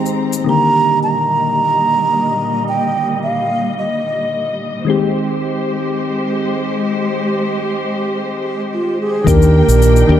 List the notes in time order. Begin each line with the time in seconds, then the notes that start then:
Already playing: D#3 G#3 C4 G4 A#5
0.06 cabasa
0.33 cabasa
0.44 A#2 D3 D#3 G3 A#3 D#5
0.49 G4 A#5
1.03 A#5
2.68 G5
3.21 F5, cabasa
3.63 cabasa
3.76 D#5, cabasa
4.18 cabasa
4.32 cabasa
4.74 cabasa
4.85 D#3 G#3 C4 G4 C5, cabasa
4.90 G4
5.01 cabasa
5.29 cabasa
5.42 cabasa
5.56 cabasa
5.83 cabasa
5.97 cabasa
6.12 cabasa
6.39 cabasa
6.52 cabasa
6.93 cabasa
7.08 cabasa
7.21 cabasa
7.48 cabasa
7.62 cabasa
7.76 cabasa
8.04 cabasa
8.18 cabasa
8.32 cabasa
8.59 cabasa
8.73 F4, cabasa
8.87 cabasa
9.01 G#4
9.14 cabasa
9.24 D#2 D#3 A#3 D4 A#4 G5, kick, cabasa
9.29 G4
9.42 cabasa
9.68 A#1, cabasa
9.82 cabasa
9.96 cabasa
10.07 D#2 D#3 A#3 D4
10.12 G4